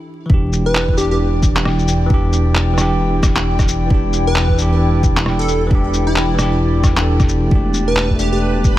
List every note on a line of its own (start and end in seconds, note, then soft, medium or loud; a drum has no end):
0.26 7.50 E1 medium
0.26 0.92 E3 medium
0.26 0.95 D4 medium
0.26 7.47 E4 medium
0.26 8.79 D5 medium
0.26 7.48 G5 medium
0.26 kick loud
0.34 0.97 G4 medium
0.53 shaker medium
0.66 0.96 B4 loud
0.75 clap loud
0.88 kick medium
0.93 2.05 E3 medium
0.93 2.08 D4 medium
0.97 1.06 G4 medium
0.97 2.10 G4 loud
0.97 shaker medium
1.11 1.17 G4 medium
1.43 kick loud
1.43 shaker medium
1.56 clap loud
1.65 cross-stick medium
1.79 shaker soft
1.88 shaker medium
2.06 2.72 E3 medium
2.10 2.76 D4 medium
2.10 kick loud
2.14 2.78 G4 loud
2.33 shaker medium
2.55 clap loud
2.73 3.85 E3 medium
2.77 3.88 D4 medium
2.77 3.90 G4 loud
2.77 cross-stick medium
2.77 shaker medium
3.23 kick loud
3.23 cross-stick medium
3.23 shaker medium
3.36 clap loud
3.59 kick loud
3.59 cross-stick soft
3.59 shaker soft
3.68 shaker medium
3.86 4.53 E3 medium
3.86 4.56 D4 medium
3.86 kick loud
3.94 4.58 G4 medium
4.13 shaker medium
4.27 4.57 B4 loud
4.36 clap loud
4.49 kick medium
4.54 5.66 E3 medium
4.54 5.69 D4 medium
4.58 5.71 G4 loud
4.58 shaker medium
5.03 kick loud
5.03 shaker medium
5.17 clap loud
5.26 cross-stick medium
5.39 5.63 A4 medium
5.39 shaker soft
5.48 shaker medium
5.67 6.33 E3 loud
5.67 6.36 D4 medium
5.71 6.38 G4 loud
5.71 kick loud
5.94 shaker medium
6.07 6.52 E4 medium
6.16 clap loud
6.34 6.92 E3 medium
6.34 6.95 D4 medium
6.39 6.97 G4 loud
6.39 cross-stick medium
6.39 shaker medium
6.84 kick loud
6.84 cross-stick soft
6.84 shaker medium
6.93 7.47 E3 medium
6.97 7.49 D4 medium
6.97 clap loud
7.01 7.51 A4 medium
7.20 kick loud
7.20 cross-stick soft
7.20 shaker soft
7.29 shaker medium
7.47 8.14 A3 medium
7.47 8.79 B4 medium
7.47 kick loud
7.51 8.79 E1 medium
7.51 8.79 B3 medium
7.51 8.17 D4 medium
7.51 8.79 G4 medium
7.51 8.79 A5 medium
7.55 8.19 G4 medium
7.74 shaker medium
7.88 8.17 B4 medium
7.96 clap loud
8.10 kick medium
8.15 8.79 A3 medium
8.15 8.79 D4 medium
8.15 8.28 G4 medium
8.19 8.79 G4 loud
8.19 shaker soft
8.33 8.38 G4 medium
8.64 kick loud
8.64 shaker medium